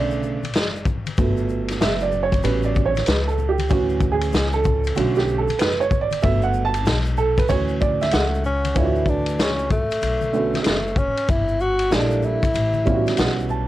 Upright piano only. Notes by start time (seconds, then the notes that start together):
Already playing: C#3 D3 A3 D5
1.18 F#3 A3 B3
1.81 E5
2.02 D5
2.23 C#5
2.43 F#3 G3 B3 C#4 B4
2.65 D5
2.86 C#5
3.06 B4
3.28 A4
3.49 G4
3.70 E3 F#3 C#4 F#4
4.12 G#4
4.54 A4
4.96 D3 A3 C#4 F#4
5.17 G4
5.38 A4
5.59 B4
5.80 C#5
6.01 D5
6.22 F#3 A3 B3 E5
6.43 F#5
6.65 A5
7.18 A4
7.38 B4
7.49 E3 F#3 C#4 C#5
7.81 D5
8.01 E5
8.13 F#5
8.74 E3 A3 D4 F4 C#5
8.83 F#4
10.33 D3 A3 B3 C#4 F#4
11.91 G3 A#3 D4 E4 G#4
11.99 A4
12.85 G3 B3 C#4 E4 F4
12.94 F#4
13.18 F#5
13.50 A5